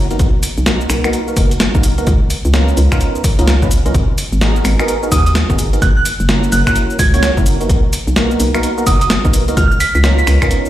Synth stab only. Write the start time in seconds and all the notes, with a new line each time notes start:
0.11 A#3 B3 D#4 F#4 A#4
0.66 A#3 B3 D#4 F#4 A#4
1.04 A#3 B3 D#4 F#4 A#4
1.28 A#3 B3 D#4 F#4 A#4
1.36 A#3 B3 D#4 F#4 A#4
1.75 A#3 B3 D#4 F#4 A#4
1.98 A#3 B3 D#4 F#4 A#4
2.54 B3 C#4 D#4 F4 A#4
2.92 B3 C#4 D#4 F4 A#4
3.39 B3 C#4 D#4 F4 A#4
3.62 B3 C#4 D#4 F4 B4
3.86 B3 C#4 D#4 F4 A#4
4.41 B3 D#4 F#4 G#4 A#4
4.79 B3 D#4 F#4 G#4 A#4
5.03 B3 D#4 F#4 G#4 A#4
5.12 B3 D#4 F#4 G#4 A#4
5.50 B3 D#4 F#4 G#4 A#4
5.73 B3 D#4 F#4 G#4 A#4
6.29 A#3 C#4 E4 F#4 A#4
6.67 A#3 C#4 E4 F#4 A#4
7.14 A#3 C#4 E4 F#4 C#5
7.37 A#3 C#4 E4 F#4 A#4
7.61 A#3 B3 D#4 F#4 A#4
8.16 A#3 B3 D#4 F#4 A#4
8.54 A#3 B3 D#4 F#4 A#4
8.78 A#3 B3 D#4 F#4 A#4
8.87 A#3 B3 D#4 F#4 A#4
9.25 A#3 B3 D#4 F#4 A#4
9.48 A#3 B3 D#4 F#4 A#4
10.04 B3 C#4 D#4 F4 A#4
10.42 B3 C#4 D#4 F4 A#4